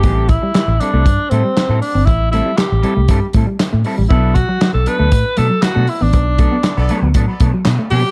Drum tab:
HH |xxxxxxxo|xxxxxxxo|xxxxxxxo|xxxxxxxo|
CP |--x---x-|--x---x-|--x---x-|--x---x-|
SD |--o---o-|--o---o-|--o---o-|--o---o-|
BD |oo--o---|o---oo--|oo--o---|oo--oo--|